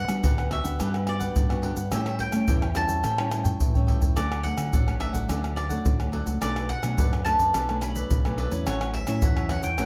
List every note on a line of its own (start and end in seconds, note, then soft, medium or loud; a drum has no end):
0.00 0.21 G3 medium
0.00 0.48 F#5 loud
0.08 0.21 G3 medium
0.08 0.47 B3 medium
0.08 0.47 D4 medium
0.08 0.47 F#4 medium
0.08 pandeiro medium
0.08 tamborim medium
0.08 shaker medium
0.23 0.59 D2 medium
0.23 0.77 D3 medium
0.23 0.36 D4 medium
0.23 0.37 G4 medium
0.23 0.37 B4 medium
0.23 0.37 F#5 medium
0.23 pandeiro medium
0.23 shaker medium
0.23 surdo loud
0.38 0.50 G4 soft
0.38 0.51 B4 soft
0.38 0.51 F#5 soft
0.38 pandeiro soft
0.38 tamborim medium
0.38 shaker soft
0.50 0.61 B3 medium
0.50 0.64 D4 medium
0.50 0.61 D4 soft
0.50 0.61 F#4 medium
0.50 0.64 G4 soft
0.50 0.64 B4 soft
0.50 1.04 E5 medium
0.50 0.63 F#5 medium
0.50 pandeiro medium
0.50 tamborim medium
0.64 0.77 D2 medium
0.64 1.03 B3 medium
0.64 1.03 D4 medium
0.64 1.03 F#4 medium
0.64 0.78 G4 medium
0.64 0.78 B4 medium
0.64 0.78 F#5 medium
0.64 pandeiro medium
0.64 shaker medium
0.64 surdo soft
0.79 1.28 G2 medium
0.79 1.33 G3 medium
0.79 0.92 D4 medium
0.79 0.93 G4 medium
0.79 0.93 B4 medium
0.79 0.92 F#5 medium
0.79 pandeiro medium
0.79 tamborim medium
0.79 shaker medium
0.79 surdo medium
0.93 1.06 G4 soft
0.93 1.06 B4 soft
0.93 1.06 F#5 soft
0.93 pandeiro soft
0.93 tamborim medium
0.93 shaker soft
1.06 1.46 B3 medium
1.06 1.46 D4 medium
1.06 1.46 F#4 medium
1.06 1.61 D5 medium
1.06 muted cavaquinho stroke soft
1.06 pandeiro medium
1.06 tamborim medium
1.19 1.49 G4 medium
1.19 1.48 B4 medium
1.19 1.48 F#5 medium
1.19 pandeiro medium
1.19 shaker medium
1.19 surdo soft
1.36 1.72 G2 loud
1.36 1.89 D3 soft
1.36 pandeiro medium
1.36 shaker medium
1.36 surdo medium
1.49 1.60 B3 medium
1.49 1.60 D4 medium
1.49 1.60 F#4 medium
1.49 1.62 G4 soft
1.49 1.62 B4 soft
1.49 1.62 F#5 soft
1.49 pandeiro soft
1.49 tamborim medium
1.49 shaker soft
1.62 1.80 B3 medium
1.62 1.76 D4 medium
1.62 1.81 D4 medium
1.62 1.81 F#4 medium
1.62 1.76 G4 medium
1.62 1.76 B4 medium
1.62 1.75 F#5 medium
1.62 pandeiro medium
1.62 surdo soft
1.76 1.89 G2 medium
1.76 1.90 G4 soft
1.76 1.91 B4 soft
1.76 1.90 F#5 soft
1.76 pandeiro medium
1.76 shaker medium
1.76 surdo soft
1.91 2.46 A2 medium
1.91 2.28 A2 medium
1.91 2.30 G3 medium
1.91 2.30 C#4 medium
1.91 2.30 E4 medium
1.91 2.05 G4 medium
1.91 2.05 A4 medium
1.91 2.05 C#5 medium
1.91 2.19 E5 medium
1.91 2.05 G5 medium
1.91 pandeiro medium
1.91 tamborim medium
1.91 shaker medium
1.91 surdo medium
2.06 2.18 A4 soft
2.06 2.19 C#5 soft
2.06 2.19 G5 medium
2.06 pandeiro soft
2.06 tamborim medium
2.06 shaker soft
2.19 2.76 G5 medium
2.19 muted cavaquinho stroke soft
2.19 pandeiro medium
2.19 surdo soft
2.32 2.44 G3 medium
2.32 2.45 A3 medium
2.32 2.44 C#4 medium
2.32 2.44 E4 medium
2.32 pandeiro soft
2.32 tamborim medium
2.32 shaker medium
2.47 2.84 E2 medium
2.47 3.02 E3 medium
2.47 2.65 G3 medium
2.47 2.65 C#4 soft
2.47 2.65 E4 medium
2.47 2.61 G4 medium
2.47 2.61 A4 medium
2.47 2.62 C#5 medium
2.47 2.61 G5 medium
2.47 pandeiro medium
2.47 shaker medium
2.47 surdo loud
2.62 2.74 A4 soft
2.62 2.75 C#5 soft
2.62 2.75 G5 medium
2.62 pandeiro soft
2.62 tamborim medium
2.62 shaker soft
2.75 3.03 G3 soft
2.75 3.03 C#4 medium
2.75 3.03 E4 medium
2.75 2.89 G4 soft
2.75 2.88 A4 soft
2.75 2.88 C#5 soft
2.75 2.86 G5 medium
2.75 3.85 A5 medium
2.75 pandeiro medium
2.75 tamborim medium
2.75 shaker medium
2.87 3.02 E2 medium
2.87 3.02 A4 medium
2.87 3.03 C#5 medium
2.87 3.02 G5 medium
2.87 pandeiro medium
2.87 shaker medium
2.87 surdo soft
3.03 3.52 A2 medium
3.03 3.58 A2 soft
3.03 3.17 G4 medium
3.03 3.17 A4 medium
3.03 3.17 C#5 medium
3.03 3.17 G5 medium
3.03 pandeiro medium
3.03 tamborim medium
3.03 shaker medium
3.03 surdo medium
3.18 3.28 G3 medium
3.18 3.29 C#4 medium
3.18 3.29 E4 medium
3.18 3.30 A4 soft
3.18 3.30 C#5 soft
3.18 3.31 G5 soft
3.18 pandeiro soft
3.18 tamborim medium
3.18 shaker soft
3.31 3.59 G3 medium
3.31 3.59 C#4 medium
3.31 3.59 E4 medium
3.31 muted cavaquinho stroke soft
3.31 pandeiro medium
3.31 tamborim medium
3.31 shaker medium
3.44 3.73 A4 medium
3.44 3.73 C#5 medium
3.44 3.72 G5 medium
3.44 surdo medium
3.44 pandeiro medium
3.44 shaker medium
3.44 surdo soft
3.60 3.97 A2 loud
3.60 4.14 E3 medium
3.60 pandeiro medium
3.60 shaker medium
3.60 surdo loud
3.74 4.13 G3 medium
3.74 4.13 C#4 medium
3.74 4.13 E4 medium
3.74 3.87 A4 soft
3.74 3.87 C#5 soft
3.74 3.87 G5 soft
3.74 pandeiro soft
3.74 shaker soft
3.74 surdo medium
3.87 4.01 G4 medium
3.87 4.01 A4 medium
3.87 4.01 C#5 medium
3.87 3.99 G5 medium
3.87 pandeiro medium
3.87 surdo medium
4.01 4.14 E2 medium
4.01 4.15 A4 soft
4.01 4.15 C#5 soft
4.01 4.15 G5 soft
4.01 pandeiro medium
4.01 shaker medium
4.01 surdo medium
4.16 4.53 D2 medium
4.16 4.70 D3 medium
4.16 4.41 F#3 medium
4.16 4.41 A3 medium
4.16 4.29 D4 medium
4.16 4.41 D4 medium
4.16 4.30 A4 medium
4.16 4.46 D5 medium
4.16 4.30 D5 medium
4.16 4.29 F#5 medium
4.16 pandeiro medium
4.16 tamborim medium
4.16 shaker medium
4.16 surdo medium
4.30 4.43 A4 soft
4.30 4.43 D5 soft
4.30 4.44 F#5 medium
4.30 pandeiro soft
4.30 tamborim medium
4.30 shaker soft
4.43 4.83 F#3 medium
4.43 4.83 A3 medium
4.43 4.83 D4 medium
4.43 4.96 F#5 medium
4.43 muted cavaquinho stroke soft
4.43 pandeiro medium
4.43 surdo soft
4.58 4.70 D3 medium
4.58 pandeiro medium
4.58 tamborim medium
4.58 shaker medium
4.72 5.09 A1 medium
4.72 5.27 A2 medium
4.72 4.86 D4 medium
4.72 4.86 A4 medium
4.72 4.86 D5 medium
4.72 4.85 F#5 medium
4.72 pandeiro medium
4.72 shaker medium
4.72 surdo loud
4.86 5.11 F#3 medium
4.86 5.11 A3 medium
4.86 5.11 D4 medium
4.86 4.99 A4 soft
4.86 4.99 D5 soft
4.86 5.00 F#5 medium
4.86 pandeiro soft
4.86 tamborim medium
4.86 shaker soft
4.99 5.13 D4 soft
4.99 5.14 A4 soft
4.99 5.13 D5 medium
4.99 5.56 E5 medium
4.99 5.12 F#5 soft
4.99 pandeiro medium
4.99 tamborim medium
5.13 5.26 A1 medium
5.13 5.24 F#3 medium
5.13 5.24 A3 medium
5.13 5.24 D4 medium
5.13 5.28 A4 medium
5.13 5.28 D5 medium
5.13 5.27 F#5 medium
5.13 pandeiro medium
5.13 shaker medium
5.13 surdo soft
5.28 5.77 D2 medium
5.28 5.83 D3 medium
5.28 5.67 F#3 soft
5.28 5.67 A3 medium
5.28 5.42 D4 medium
5.28 5.68 D4 medium
5.28 5.42 A4 medium
5.28 5.42 D5 medium
5.28 5.42 F#5 medium
5.28 pandeiro medium
5.28 tamborim medium
5.28 shaker medium
5.28 surdo medium
5.43 5.56 A4 soft
5.43 5.56 D5 soft
5.43 5.56 F#5 soft
5.43 pandeiro soft
5.43 tamborim medium
5.43 shaker soft
5.56 6.09 D5 medium
5.56 muted cavaquinho stroke soft
5.56 pandeiro medium
5.56 tamborim medium
5.69 6.08 F#3 medium
5.69 6.09 A3 medium
5.69 6.09 D4 medium
5.69 5.98 A4 soft
5.69 5.98 D5 medium
5.69 5.97 F#5 medium
5.69 pandeiro medium
5.69 shaker medium
5.69 surdo soft
5.85 6.21 D2 loud
5.85 6.39 A2 soft
5.85 pandeiro medium
5.85 shaker medium
5.85 surdo loud
5.99 6.12 A4 soft
5.99 6.12 D5 soft
5.99 6.12 F#5 soft
5.99 pandeiro soft
5.99 tamborim medium
5.99 shaker soft
6.12 6.37 F#3 medium
6.12 6.37 A3 medium
6.12 6.26 D4 medium
6.12 6.37 D4 medium
6.12 6.26 A4 medium
6.12 6.26 D5 medium
6.12 6.24 F#5 medium
6.12 pandeiro medium
6.12 surdo soft
6.26 6.39 C#2 medium
6.26 6.41 A4 soft
6.26 6.40 D5 soft
6.26 6.39 F#5 soft
6.26 pandeiro medium
6.26 shaker medium
6.26 surdo soft
6.41 6.78 B1 medium
6.41 6.95 B2 medium
6.41 6.68 F#3 medium
6.41 6.68 A3 medium
6.41 6.54 D4 medium
6.41 6.68 D4 medium
6.41 6.54 A4 medium
6.41 6.55 B4 medium
6.41 6.68 D5 medium
6.41 6.54 D5 medium
6.41 pandeiro medium
6.41 tamborim medium
6.41 shaker medium
6.41 surdo medium
6.56 6.68 A4 soft
6.56 6.69 B4 soft
6.56 6.69 D5 soft
6.56 pandeiro soft
6.56 tamborim medium
6.56 shaker soft
6.69 7.24 F#5 loud
6.69 muted cavaquinho stroke soft
6.69 pandeiro medium
6.69 surdo soft
6.82 6.95 B2 medium
6.82 7.21 F#3 medium
6.82 7.21 A3 medium
6.82 7.21 D4 medium
6.82 pandeiro medium
6.82 tamborim medium
6.82 shaker medium
6.97 7.51 F#2 medium
6.97 7.34 F#2 loud
6.97 7.10 D4 medium
6.97 7.11 A4 medium
6.97 7.11 B4 medium
6.97 7.11 D5 medium
6.97 pandeiro medium
6.97 shaker medium
6.97 surdo loud
7.12 7.25 A4 soft
7.12 7.25 B4 soft
7.12 7.25 D5 medium
7.12 pandeiro soft
7.12 tamborim medium
7.12 shaker soft
7.25 7.52 F#3 medium
7.25 7.52 A3 medium
7.25 7.38 D4 medium
7.25 7.52 D4 medium
7.25 7.39 A4 medium
7.25 7.39 B4 soft
7.25 7.37 D5 medium
7.25 7.77 A5 loud
7.25 pandeiro medium
7.25 tamborim medium
7.25 shaker medium
7.39 7.51 F#2 medium
7.39 7.53 A4 medium
7.39 7.53 B4 medium
7.39 7.52 D5 medium
7.39 pandeiro medium
7.39 shaker medium
7.39 surdo soft
7.54 8.02 B1 medium
7.54 8.07 B2 medium
7.54 7.67 D4 medium
7.54 7.67 A4 medium
7.54 7.68 B4 medium
7.54 7.67 D5 medium
7.54 pandeiro medium
7.54 tamborim medium
7.54 shaker medium
7.54 surdo medium
7.68 7.78 F#3 medium
7.68 7.78 A3 medium
7.68 7.78 D4 medium
7.68 7.81 A4 soft
7.68 7.81 B4 soft
7.68 7.81 D5 medium
7.68 pandeiro soft
7.68 tamborim medium
7.68 shaker soft
7.81 8.08 F#3 soft
7.81 8.08 A3 soft
7.81 8.09 D4 medium
7.81 8.34 B5 loud
7.81 muted cavaquinho stroke soft
7.81 pandeiro medium
7.81 tamborim medium
7.81 shaker medium
7.95 8.24 A4 medium
7.95 8.23 B4 medium
7.95 8.22 D5 medium
7.95 pandeiro medium
7.95 shaker medium
7.95 surdo soft
8.10 8.46 B1 loud
8.10 8.64 F#2 medium
8.10 pandeiro medium
8.10 shaker medium
8.10 surdo loud
8.25 8.48 F#3 medium
8.25 8.48 A3 medium
8.25 8.49 D4 medium
8.25 8.37 A4 soft
8.25 8.38 B4 soft
8.25 8.37 D5 soft
8.25 pandeiro soft
8.25 tamborim medium
8.25 shaker soft
8.37 8.51 D4 medium
8.37 8.51 A4 medium
8.37 8.64 B4 medium
8.37 8.51 B4 medium
8.37 8.49 D5 medium
8.37 pandeiro medium
8.51 8.64 E2 medium
8.51 9.03 F#3 medium
8.51 9.04 C#4 medium
8.51 9.04 E4 medium
8.51 8.66 A4 soft
8.51 8.65 B4 soft
8.51 8.64 D5 soft
8.51 pandeiro medium
8.51 shaker medium
8.51 surdo soft
8.66 9.03 A1 medium
8.66 9.20 A2 medium
8.66 8.79 F#4 medium
8.66 8.80 A4 medium
8.66 8.93 C#5 medium
8.66 8.80 C#5 medium
8.66 8.80 F#5 medium
8.66 pandeiro medium
8.66 tamborim medium
8.66 shaker medium
8.66 surdo medium
8.81 8.93 A4 soft
8.81 8.94 C#5 soft
8.81 8.94 F#5 medium
8.81 pandeiro soft
8.81 tamborim medium
8.81 shaker soft
8.94 9.07 E5 medium
8.94 muted cavaquinho stroke soft
8.94 pandeiro medium
8.94 surdo soft
9.07 9.20 A2 medium
9.07 9.46 F#3 medium
9.07 9.46 C#4 medium
9.07 9.46 E4 medium
9.07 9.48 E5 medium
9.07 pandeiro medium
9.07 tamborim medium
9.07 shaker medium
9.22 9.59 E2 loud
9.22 9.76 E3 medium
9.22 9.35 F#4 medium
9.22 9.36 A4 medium
9.22 9.36 C#5 medium
9.22 9.36 F#5 medium
9.22 pandeiro medium
9.22 shaker medium
9.22 surdo loud
9.37 9.50 A4 soft
9.37 9.50 C#5 soft
9.37 9.50 F#5 medium
9.37 pandeiro soft
9.37 tamborim medium
9.37 shaker soft
9.49 9.67 F#3 medium
9.49 9.67 C#4 medium
9.49 9.67 E4 medium
9.49 9.63 F#4 medium
9.49 9.64 A4 soft
9.49 9.63 C#5 medium
9.49 9.63 F#5 medium
9.49 9.62 F#5 medium
9.49 pandeiro medium
9.49 tamborim medium
9.63 9.76 E2 medium
9.63 9.78 A4 medium
9.63 9.78 C#5 medium
9.63 9.77 F#5 medium
9.63 9.86 G5 medium
9.63 pandeiro medium
9.63 shaker medium
9.63 surdo soft
9.78 9.86 A1 medium
9.78 9.86 A2 medium
9.78 9.86 F#3 medium
9.78 9.86 C#4 medium
9.78 9.86 E4 medium
9.78 9.86 F#4 medium
9.78 9.86 A4 medium
9.78 9.86 C#5 medium
9.78 9.86 F#5 medium
9.78 pandeiro medium
9.78 tamborim medium
9.78 shaker medium
9.78 surdo medium